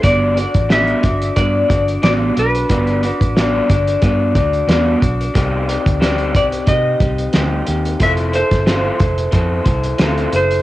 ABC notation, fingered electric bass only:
X:1
M:4/4
L:1/16
Q:"Swing 16ths" 1/4=90
K:G
V:1 name="Fingered electric bass" clef=bass
G,,,3 A,,,3 G,,,2 G,,2 G,,,2 A,,,2 B,,,2 | G,,,3 A,,,3 G,,,2 G,,2 D,,2 E,,2 B,,,2 | C,,3 D,,3 C,,2 C,2 C,,2 D,,2 _E,,2 | =F,,,3 G,,,3 F,,,2 =F,,2 C,,2 D,,2 ^F,,,2 |]